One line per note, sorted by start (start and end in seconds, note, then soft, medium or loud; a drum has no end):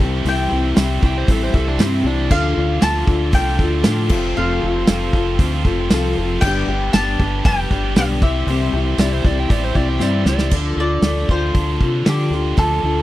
0.00 0.22 C2 medium
0.00 0.25 C3 medium
0.00 0.26 E3 medium
0.00 0.26 G3 medium
0.00 0.25 C4 medium
0.00 0.26 E4 medium
0.00 0.25 G4 medium
0.00 2.29 G4 medium
0.00 2.29 C5 medium
0.00 2.29 E5 medium
0.00 0.23 A5 loud
0.00 2.30 C6 medium
0.00 kick loud
0.25 0.48 C2 loud
0.25 0.51 C3 medium
0.25 0.76 E3 medium
0.25 0.51 G3 medium
0.25 0.51 C4 medium
0.25 0.50 E4 medium
0.25 0.49 G4 loud
0.25 1.26 G5 medium
0.25 open hi-hat medium
0.50 0.74 C2 medium
0.50 0.75 C4 soft
0.50 0.76 E4 soft
0.50 0.76 G4 soft
0.75 1.00 C2 medium
0.75 1.01 C3 medium
0.75 1.26 E3 medium
0.75 1.02 G3 medium
0.75 1.02 C4 medium
0.75 1.01 E4 medium
0.75 0.99 G4 medium
0.75 snare loud
0.75 open hi-hat medium
0.75 tambourine loud
1.01 1.26 C2 medium
1.01 1.28 C4 soft
1.01 1.28 E4 medium
1.01 1.27 G4 medium
1.01 kick medium
1.06 1.17 G5 medium
1.18 1.29 C5 medium
1.27 1.51 A1 medium
1.27 1.79 E3 medium
1.27 1.53 G3 medium
1.27 1.54 C4 medium
1.27 1.53 E4 medium
1.27 1.52 G4 medium
1.27 1.42 A4 medium
1.27 kick loud
1.27 open hi-hat medium
1.43 1.55 C5 medium
1.53 1.77 C2 medium
1.53 1.80 G3 medium
1.53 1.79 C4 medium
1.53 1.79 E4 medium
1.53 1.79 G4 medium
1.53 1.67 A4 medium
1.53 kick medium
1.68 1.80 D4 medium
1.79 2.02 G2 loud
1.79 2.05 C3 medium
1.79 2.30 E3 loud
1.79 2.06 G3 loud
1.79 2.06 C4 loud
1.79 2.05 C4 medium
1.79 2.04 E4 medium
1.79 2.03 G4 loud
1.79 snare loud
1.79 open hi-hat medium
1.79 tambourine medium
2.04 2.28 C2 medium
2.04 2.30 G3 medium
2.04 2.30 C4 soft
2.04 2.31 D4 medium
2.04 2.31 E4 medium
2.04 2.30 G4 medium
2.29 2.54 D2 medium
2.29 2.56 D3 medium
2.29 2.57 F3 medium
2.29 2.82 A3 medium
2.29 2.56 D4 medium
2.29 2.55 F4 medium
2.29 2.53 A4 loud
2.29 6.38 A4 medium
2.29 4.10 D5 medium
2.29 6.38 F5 medium
2.29 2.82 F5 loud
2.29 4.10 D6 medium
2.29 kick loud
2.29 crash loud
2.54 2.80 D2 medium
2.54 2.79 D4 medium
2.54 2.80 F4 medium
2.54 2.80 A4 medium
2.79 3.05 D2 medium
2.79 3.07 D3 medium
2.79 3.07 F3 medium
2.79 3.32 A3 medium
2.79 3.07 D4 medium
2.79 3.06 F4 medium
2.79 3.05 A4 medium
2.79 3.30 A5 loud
2.79 snare loud
2.79 open hi-hat medium
2.79 tambourine loud
3.06 3.31 D2 medium
3.06 3.31 D4 soft
3.06 3.33 F4 medium
3.06 3.33 A4 medium
3.06 kick loud
3.31 3.56 C2 medium
3.31 3.83 D3 medium
3.31 3.58 F3 medium
3.31 3.58 A3 medium
3.31 3.59 D4 medium
3.31 3.60 F4 medium
3.31 4.36 G5 loud
3.31 kick loud
3.31 open hi-hat medium
3.36 3.58 A4 medium
3.58 3.82 D2 medium
3.58 3.83 A3 medium
3.58 3.83 D4 medium
3.58 3.85 F4 medium
3.58 3.85 A4 medium
3.58 kick medium
3.63 3.84 D4 soft
3.83 4.09 A2 medium
3.83 4.10 D3 medium
3.83 4.11 F3 medium
3.83 4.09 A3 medium
3.83 4.11 D4 medium
3.83 4.10 F4 medium
3.83 4.08 A4 medium
3.83 snare loud
3.83 open hi-hat medium
3.83 tambourine medium
4.09 4.33 F1 medium
4.09 4.36 F2 medium
4.09 4.36 C3 medium
4.09 4.37 F3 medium
4.09 4.37 A3 loud
4.09 4.36 C4 soft
4.09 4.36 F4 medium
4.09 4.36 A4 medium
4.09 6.40 C5 medium
4.09 6.40 C6 medium
4.09 kick loud
4.09 crash loud
4.36 4.60 F1 medium
4.36 5.14 F2 medium
4.36 5.14 C3 medium
4.36 4.62 F3 medium
4.36 4.87 A3 loud
4.36 4.62 C4 medium
4.36 4.63 F4 medium
4.36 4.61 A4 loud
4.36 5.35 F5 medium
4.62 4.86 F1 medium
4.62 4.89 F4 medium
4.62 4.88 A4 medium
4.66 4.88 C4 soft
4.87 5.11 F1 medium
4.87 5.14 F3 medium
4.87 5.39 A3 medium
4.87 5.14 C4 medium
4.87 5.15 F4 medium
4.87 5.13 A4 medium
4.87 snare loud
4.87 open hi-hat medium
4.87 tambourine medium
5.13 5.37 F1 loud
5.13 5.40 F4 medium
5.13 5.39 A4 medium
5.13 kick medium
5.18 5.39 C4 medium
5.39 5.62 D2 loud
5.39 5.65 F3 medium
5.39 5.65 A3 medium
5.39 5.65 C4 medium
5.39 5.65 F4 medium
5.39 kick loud
5.39 open hi-hat medium
5.43 5.64 A4 medium
5.64 5.88 F1 medium
5.64 5.90 F3 medium
5.64 5.91 A3 medium
5.64 5.91 C4 medium
5.64 5.91 F4 medium
5.64 5.90 A4 medium
5.64 kick medium
5.90 6.14 C2 medium
5.90 6.40 F2 medium
5.90 6.40 C3 loud
5.90 6.17 F3 medium
5.90 6.17 A3 loud
5.90 6.17 C4 loud
5.90 6.18 F4 loud
5.90 6.17 A4 loud
5.90 snare loud
5.90 open hi-hat medium
5.90 tambourine medium
6.17 6.40 F1 medium
6.17 6.42 F3 medium
6.17 6.42 A3 medium
6.17 6.41 C4 medium
6.17 6.40 F4 medium
6.17 6.43 A4 medium
6.21 6.45 C4 soft
6.21 6.44 F4 medium
6.41 6.65 G1 loud
6.41 6.69 G2 medium
6.41 6.69 D3 medium
6.41 10.48 G4 medium
6.41 6.94 G4 loud
6.41 8.19 B4 medium
6.41 8.19 D5 medium
6.41 6.93 G5 loud
6.41 8.20 B5 medium
6.41 kick loud
6.41 crash loud
6.46 6.69 G3 medium
6.46 6.70 B3 medium
6.46 6.70 D4 loud
6.46 6.68 G4 loud
6.67 6.90 G1 medium
6.67 6.94 G4 medium
6.71 6.96 G3 soft
6.71 6.95 B3 medium
6.71 6.95 D4 medium
6.93 7.16 G1 medium
6.93 7.20 G2 medium
6.93 7.43 G3 medium
6.93 7.44 B3 medium
6.93 7.45 A5 loud
6.93 snare loud
6.93 open hi-hat medium
6.93 tambourine loud
6.97 7.21 D3 medium
6.97 7.21 G3 medium
6.97 7.21 B3 medium
6.97 7.20 D4 medium
6.97 7.19 G4 medium
7.20 7.42 G1 medium
7.20 7.45 B3 medium
7.20 7.46 D4 medium
7.20 7.45 G4 medium
7.20 kick loud
7.24 7.45 G3 soft
7.45 7.68 F1 medium
7.45 7.71 G3 medium
7.45 7.71 B3 medium
7.45 7.72 D4 medium
7.45 7.71 G4 medium
7.45 7.93 G5 loud
7.45 kick loud
7.45 open hi-hat medium
7.71 7.93 G1 medium
7.71 7.97 B3 medium
7.71 7.97 D4 medium
7.71 7.97 G4 medium
7.71 kick medium
7.75 7.97 G3 soft
7.96 8.22 B1 medium
7.96 8.22 G2 medium
7.96 8.23 D3 medium
7.96 8.22 G3 medium
7.96 8.23 B3 medium
7.96 8.23 D4 medium
7.96 8.21 G4 medium
7.96 8.05 F5 medium
7.96 snare loud
7.96 open hi-hat medium
7.96 tambourine medium
8.22 8.45 C2 medium
8.22 8.46 C3 medium
8.22 8.46 E3 medium
8.22 8.47 G3 loud
8.22 8.48 E4 soft
8.22 8.47 G4 medium
8.22 10.50 C5 medium
8.22 9.97 E5 medium
8.22 10.51 E5 medium
8.22 10.51 C6 medium
8.22 kick loud
8.26 8.49 C4 soft
8.47 8.70 C2 loud
8.47 8.73 C3 medium
8.47 8.97 E3 medium
8.47 8.73 G3 medium
8.47 8.74 C4 medium
8.47 8.74 E4 medium
8.47 open hi-hat medium
8.51 8.72 G4 medium
8.73 8.96 C2 medium
8.73 8.97 C4 soft
8.73 8.99 E4 soft
8.73 8.98 G4 medium
8.98 9.21 C2 medium
8.98 9.24 C3 medium
8.98 9.47 E3 medium
8.98 9.24 G3 medium
8.98 9.24 C4 medium
8.98 9.25 E4 loud
8.98 9.23 G4 medium
8.98 9.12 D5 medium
8.98 snare loud
8.98 open hi-hat medium
8.98 tambourine medium
9.12 9.24 C5 medium
9.24 9.47 C2 medium
9.24 9.49 C4 medium
9.24 9.51 E4 medium
9.24 9.49 G4 medium
9.24 9.37 D5 medium
9.24 kick medium
9.40 9.51 G5 medium
9.49 9.73 A1 loud
9.49 9.99 E3 medium
9.49 9.75 G3 medium
9.49 9.75 C4 medium
9.49 9.74 E4 medium
9.49 9.73 G4 medium
9.49 9.62 D5 medium
9.49 kick loud
9.49 open hi-hat medium
9.64 9.76 C5 medium
9.74 9.99 C2 medium
9.74 10.00 G3 medium
9.74 9.99 C4 medium
9.74 9.99 E4 medium
9.74 10.00 G4 medium
9.74 9.88 D5 medium
9.74 kick medium
9.89 10.01 G5 medium
9.99 10.23 G2 medium
9.99 10.25 C3 medium
9.99 10.51 E3 loud
9.99 10.26 G3 medium
9.99 10.26 C4 loud
9.99 10.26 E4 loud
9.99 10.24 G4 loud
9.99 10.27 D5 medium
9.99 snare medium
9.99 tambourine medium
10.25 10.49 C#2 medium
10.25 10.52 G3 medium
10.25 10.52 C4 soft
10.25 10.52 E4 medium
10.25 10.51 G4 medium
10.25 snare medium
10.29 10.53 D5 medium
10.38 snare medium
10.51 10.73 D2 medium
10.51 10.77 D3 medium
10.51 10.78 F3 medium
10.51 10.78 D4 loud
10.51 10.78 F4 medium
10.51 10.77 A4 medium
10.51 kick loud
10.51 crash loud
10.76 10.99 D2 medium
10.76 11.80 D3 medium
10.76 11.04 F4 medium
10.76 11.04 A4 medium
10.76 11.29 D5 medium
10.81 11.03 D4 soft
11.02 11.24 D2 medium
11.02 11.29 D3 medium
11.02 11.30 F3 medium
11.02 12.33 A3 medium
11.02 11.30 D4 medium
11.02 11.30 F4 medium
11.02 snare loud
11.02 open hi-hat medium
11.06 11.29 A4 medium
11.28 11.50 D2 medium
11.28 11.56 F4 soft
11.28 11.55 A4 medium
11.28 12.05 C5 medium
11.28 kick medium
11.33 11.56 D4 soft
11.55 11.77 D2 medium
11.55 11.81 F3 medium
11.55 11.82 D4 medium
11.55 kick loud
11.55 open hi-hat medium
11.59 11.83 F4 medium
11.59 11.81 A4 medium
11.80 12.02 C3 medium
11.80 12.56 D3 medium
11.80 12.07 F4 soft
11.80 12.07 A4 medium
11.80 kick medium
11.85 12.06 D4 soft
12.06 12.28 D3 medium
12.06 12.32 D3 medium
12.06 12.33 F3 medium
12.06 12.33 D4 medium
12.06 12.33 F4 medium
12.06 12.58 G4 medium
12.06 12.30 A4 medium
12.06 snare loud
12.06 open hi-hat medium
12.30 12.53 D2 medium
12.30 12.58 F4 soft
12.30 12.58 A4 soft
12.30 snare soft
12.35 12.58 D4 soft
12.57 12.79 D2 loud
12.57 12.84 D3 medium
12.57 12.84 F3 medium
12.57 12.84 D4 medium
12.57 12.83 F4 medium
12.57 13.02 A4 loud
12.57 12.81 A4 medium
12.57 kick loud
12.57 open hi-hat medium
12.83 13.02 D2 medium
12.83 13.02 D3 medium
12.83 13.02 D4 soft
12.83 13.02 F4 soft
12.83 13.02 A4 medium